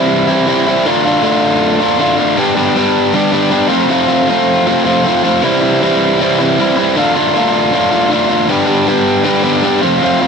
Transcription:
0.00 0.47 C3 medium
0.00 0.45 E3 medium
0.00 0.29 G3 medium
0.00 0.28 C4 medium
0.00 0.26 E4 medium
0.28 0.46 G3 medium
0.28 0.47 C4 medium
0.28 0.48 E4 medium
0.46 0.84 E3 medium
0.46 0.68 G3 medium
0.46 0.67 C4 medium
0.46 0.65 E4 medium
0.66 0.86 G3 medium
0.66 0.85 C4 medium
0.66 0.84 E4 medium
0.85 1.21 D3 medium
0.85 1.06 A3 medium
0.85 1.05 D4 loud
0.85 1.03 F4 loud
1.04 1.22 A3 medium
1.04 1.23 D4 medium
1.04 1.24 F4 medium
1.22 1.97 D3 medium
1.22 1.82 A3 medium
1.22 1.80 D4 medium
1.22 1.78 F4 medium
1.80 1.98 A3 medium
1.80 2.00 D4 medium
1.80 2.00 F4 medium
1.98 2.36 D3 medium
1.98 2.19 A3 medium
1.98 2.18 D4 medium
1.98 2.16 F4 medium
2.18 2.38 A3 medium
2.18 2.37 D4 medium
2.18 2.36 F4 medium
2.36 2.76 G2 medium
2.36 2.76 D3 medium
2.36 2.57 G3 medium
2.36 2.56 B3 loud
2.36 2.56 D4 loud
2.36 2.54 G4 loud
2.55 2.74 G3 medium
2.55 2.75 B3 medium
2.55 2.77 D4 medium
2.55 2.76 G4 medium
2.75 3.12 G3 medium
2.75 3.13 B3 medium
2.75 3.14 D4 medium
2.75 3.15 G4 medium
3.13 3.52 G2 loud
3.13 3.52 D3 loud
3.13 3.33 G3 loud
3.13 3.32 B3 medium
3.13 3.31 D4 loud
3.13 3.30 G4 loud
3.32 3.48 G3 medium
3.32 3.50 B3 medium
3.32 3.51 D4 medium
3.32 3.51 G4 medium
3.50 3.69 G3 medium
3.50 3.70 B3 medium
3.50 3.69 D4 medium
3.50 3.68 G4 medium
3.68 3.87 F2 medium
3.68 3.88 C3 medium
3.68 3.88 F3 medium
3.68 3.90 A3 medium
3.68 3.90 C4 medium
3.68 3.90 F4 loud
3.88 4.28 F2 medium
3.88 4.28 C3 loud
3.88 4.09 F3 loud
3.88 4.09 A3 loud
3.88 4.08 C4 loud
3.88 4.06 F4 loud
4.08 4.26 F3 medium
4.08 4.28 A3 medium
4.08 4.29 C4 medium
4.08 4.29 F4 medium
4.27 4.66 F3 medium
4.27 4.67 A3 medium
4.27 4.67 C4 medium
4.27 4.67 F4 medium
4.65 5.05 F2 loud
4.65 5.05 C3 medium
4.65 4.86 F3 loud
4.65 4.86 A3 loud
4.65 4.84 C4 loud
4.65 4.83 F4 loud
4.84 5.02 F3 medium
4.84 5.04 A3 medium
4.84 5.04 C4 medium
4.84 5.05 F4 medium
5.03 5.25 F3 medium
5.03 5.25 A3 medium
5.03 5.23 C4 medium
5.03 5.22 F4 medium
5.23 5.43 F3 medium
5.23 5.43 A3 medium
5.23 5.42 C4 medium
5.23 5.42 F4 medium
5.42 5.81 C3 loud
5.42 5.80 E3 loud
5.42 5.63 G3 loud
5.42 5.62 C4 loud
5.42 5.60 E4 loud
5.61 5.81 G3 medium
5.61 5.82 C4 medium
5.61 5.83 E4 medium
5.81 6.19 E3 medium
5.81 6.20 G3 medium
5.81 6.21 C4 medium
5.81 6.21 E4 medium
6.19 6.58 C3 medium
6.19 6.57 E3 medium
6.19 6.40 G3 loud
6.19 6.39 C4 medium
6.19 6.37 E4 loud
6.39 6.58 G3 medium
6.39 6.59 C4 medium
6.39 6.60 E4 medium
6.59 6.95 E3 medium
6.59 6.78 G3 medium
6.59 6.77 C4 medium
6.59 6.75 E4 medium
6.76 6.96 G3 medium
6.76 6.96 C4 medium
6.76 6.95 E4 medium
6.95 7.33 D3 loud
6.95 7.17 A3 loud
6.95 7.16 D4 medium
6.95 7.13 F4 loud
7.15 7.36 A3 medium
7.15 7.36 D4 medium
7.15 7.36 F4 medium
7.35 7.71 D3 medium
7.35 7.73 A3 medium
7.35 7.74 D4 medium
7.35 7.74 F4 medium
7.72 8.09 D3 loud
7.72 7.93 A3 loud
7.72 7.92 D4 medium
7.72 7.90 F4 loud
7.91 8.11 A3 medium
7.91 8.11 D4 medium
7.91 8.12 F4 medium
8.10 8.47 D3 medium
8.10 8.32 A3 medium
8.10 8.30 D4 medium
8.10 8.27 F4 medium
8.28 8.49 A3 medium
8.28 8.50 D4 medium
8.28 8.47 F4 medium
8.48 8.87 G2 medium
8.48 8.87 D3 medium
8.48 8.68 G3 medium
8.48 8.67 B3 medium
8.48 8.67 D4 loud
8.48 8.65 G4 loud
8.66 8.85 G3 medium
8.66 8.86 B3 medium
8.66 8.88 D4 medium
8.66 8.88 G4 medium
8.86 9.23 G3 medium
8.86 9.24 B3 medium
8.86 9.24 D4 medium
8.86 9.25 G4 medium
9.23 9.63 G2 loud
9.23 9.63 D3 medium
9.23 9.44 G3 medium
9.23 9.44 B3 loud
9.23 9.43 D4 loud
9.23 9.42 G4 loud
9.43 9.61 G3 medium
9.43 9.62 B3 medium
9.43 9.63 D4 medium
9.43 9.64 G4 medium
9.62 9.81 G3 medium
9.62 9.82 B3 medium
9.62 9.82 D4 medium
9.62 9.82 G4 medium
9.82 10.00 F2 medium
9.82 10.01 C3 medium
9.82 10.01 F3 medium
9.82 10.03 A3 medium
9.82 10.03 C4 medium
9.82 10.03 F4 loud
10.02 10.27 F2 medium
10.02 10.27 C3 medium
10.02 10.22 F3 loud
10.02 10.22 A3 loud
10.02 10.21 C4 medium
10.02 10.19 F4 loud
10.20 10.27 F3 medium
10.20 10.27 A3 medium
10.20 10.27 C4 medium
10.20 10.27 F4 medium

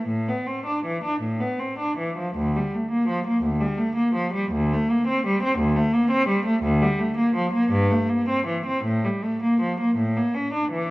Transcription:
0.08 0.27 A2 medium
0.28 0.47 B3 soft
0.47 0.66 C4 soft
0.66 0.85 D4 soft
0.85 1.04 E3 soft
1.04 1.23 D4 soft
1.22 1.41 A2 soft
1.40 1.60 B3 soft
1.59 1.79 C4 soft
1.79 1.99 D4 soft
1.98 2.18 E3 soft
2.18 2.36 F3 soft
2.36 2.54 D2 medium
2.56 2.74 G3 soft
2.74 2.92 A3 medium
2.91 3.09 A#3 medium
3.08 3.26 F3 medium
3.27 3.44 A#3 medium
3.43 3.61 D2 medium
3.60 3.79 G3 medium
3.78 3.97 A3 medium
3.96 4.15 A#3 medium
4.15 4.34 F3 medium
4.34 4.53 G3 medium
4.52 4.71 D2 medium
4.73 4.90 A3 medium
4.90 5.08 A#3 medium
5.07 5.24 C4 medium
5.26 5.42 G3 medium
5.43 5.59 C4 medium
5.59 5.76 D2 medium
5.76 5.94 A3 medium
5.94 6.12 A#3 medium
6.11 6.28 C4 medium
6.28 6.46 G3 medium
6.46 6.63 A3 medium
6.63 6.81 D2 medium
6.82 6.99 G3 medium
6.99 7.17 A3 medium
7.17 7.34 A#3 medium
7.35 7.52 F3 medium
7.53 7.70 A#3 medium
7.71 7.88 G2 medium
7.90 8.08 A3 medium
8.09 8.27 A#3 medium
8.28 8.46 C4 medium
8.47 8.65 E3 soft
8.66 8.84 C4 medium
8.85 9.03 A2 medium
9.05 9.23 G3 medium
9.24 9.42 A3 medium
9.43 9.60 A#3 medium
9.61 9.79 F3 soft
9.80 9.97 A#3 medium
9.97 10.15 A2 medium
10.16 10.34 A#3 medium
10.35 10.53 C#4 medium
10.54 10.71 D4 medium
10.72 10.89 E3 soft

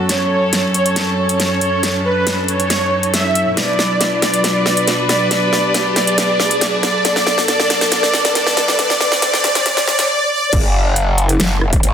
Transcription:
0.00 3.53 F#2 medium
0.00 3.53 F#3 medium
0.00 3.53 C#4 medium
0.00 3.53 A4 medium
0.00 riser medium
0.09 0.66 C#5 loud
0.09 snare medium
0.09 closed hi-hat medium
0.53 snare medium
0.53 closed hi-hat medium
0.74 1.01 C#5 medium
0.74 closed hi-hat medium
0.86 closed hi-hat medium
0.96 snare medium
0.96 closed hi-hat medium
1.18 1.97 C#5 loud
1.29 closed hi-hat medium
1.40 snare medium
1.40 closed hi-hat medium
1.61 closed hi-hat medium
1.83 snare medium
1.83 closed hi-hat medium
2.05 2.31 B4 medium
2.27 snare medium
2.27 closed hi-hat medium
2.48 3.05 C#5 medium
2.48 closed hi-hat soft
2.60 closed hi-hat medium
2.70 snare medium
2.70 closed hi-hat medium
3.03 closed hi-hat soft
3.14 3.40 E5 medium
3.14 snare medium
3.14 closed hi-hat medium
3.35 closed hi-hat medium
3.57 10.05 B2 medium
3.57 10.05 F#3 medium
3.57 10.05 D4 medium
3.57 7.01 B4 medium
3.57 4.14 D5 medium
3.57 snare medium
3.57 closed hi-hat medium
3.79 snare medium
4.01 snare medium
4.01 closed hi-hat medium
4.22 4.42 D5 medium
4.22 snare medium
4.22 closed hi-hat soft
4.34 closed hi-hat soft
4.44 5.01 D5 loud
4.44 snare medium
4.44 closed hi-hat medium
4.66 snare medium
4.77 closed hi-hat medium
4.87 snare medium
4.87 closed hi-hat medium
5.09 5.29 D5 medium
5.09 snare medium
5.09 closed hi-hat soft
5.31 5.88 D5 loud
5.31 snare medium
5.31 closed hi-hat medium
5.53 snare medium
5.74 snare medium
5.74 closed hi-hat medium
5.96 6.16 D5 medium
5.96 snare medium
5.96 closed hi-hat soft
6.07 closed hi-hat soft
6.18 6.75 D5 loud
6.18 snare medium
6.18 closed hi-hat medium
6.40 snare medium
6.51 closed hi-hat medium
6.61 snare medium
6.61 closed hi-hat medium
6.83 7.03 D5 medium
6.83 snare medium
6.83 closed hi-hat soft
7.05 10.06 A4 medium
7.05 7.47 D5 loud
7.05 snare medium
7.05 closed hi-hat medium
7.16 snare medium
7.27 snare medium
7.38 snare medium
7.48 7.90 D5 loud
7.48 snare medium
7.48 closed hi-hat medium
7.60 snare medium
7.70 snare medium
7.70 closed hi-hat medium
7.81 snare medium
7.81 closed hi-hat soft
7.92 8.34 D5 loud
7.92 snare loud
7.92 closed hi-hat medium
8.03 snare medium
8.14 snare medium
8.25 snare medium
8.25 closed hi-hat medium
8.35 8.77 D5 loud
8.35 snare loud
8.35 closed hi-hat medium
8.47 snare medium
8.57 snare loud
8.57 closed hi-hat medium
8.68 snare medium
8.79 8.99 D5 loud
8.79 snare loud
8.79 closed hi-hat medium
8.90 snare medium
9.01 9.21 D5 loud
9.01 snare loud
9.12 snare medium
9.22 9.42 D5 loud
9.22 snare loud
9.22 closed hi-hat medium
9.34 snare loud
9.44 9.64 D5 loud
9.44 snare loud
9.44 closed hi-hat medium
9.55 snare medium
9.55 closed hi-hat medium
9.66 9.86 D5 loud
9.66 snare loud
9.66 closed hi-hat medium
9.77 snare medium
9.88 10.08 D5 loud
9.88 snare loud
9.99 snare loud
9.99 closed hi-hat medium
10.09 10.29 D5 loud
10.31 10.51 D5 loud
10.53 11.38 F#1 loud
10.53 kick loud
10.53 closed hi-hat medium
10.53 crash loud
10.96 closed hi-hat medium
11.18 closed hi-hat medium
11.29 closed hi-hat medium
11.40 11.82 F#1 loud
11.40 snare loud
11.40 closed hi-hat medium
11.61 cross-stick medium
11.73 kick medium
11.73 closed hi-hat medium
11.83 11.94 A1 loud
11.83 closed hi-hat medium

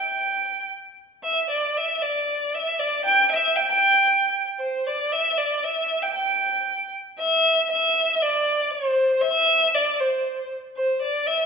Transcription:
0.00 0.68 G5 medium
1.24 1.47 E5 medium
1.50 1.78 D5 medium
1.77 2.04 E5 medium
2.02 2.56 D5 medium
2.54 2.81 E5 medium
2.79 3.05 D5 medium
3.05 3.29 G5 medium
3.31 3.57 E5 medium
3.56 3.69 G5 medium
3.69 4.43 G5 loud
4.59 4.88 C5 medium
4.86 5.13 D5 medium
5.11 5.39 E5 medium
5.37 5.65 D5 medium
5.63 6.04 E5 medium
6.02 6.14 G5 medium
6.14 6.87 G5 medium
7.19 7.66 E5 medium
7.71 8.23 E5 medium
8.21 8.72 D5 medium
8.70 9.22 C5 medium
9.21 9.75 E5 loud
9.74 10.01 D5 medium
9.99 10.50 C5 medium
10.76 11.00 C5 medium
11.01 11.28 D5 medium
11.26 11.46 E5 medium

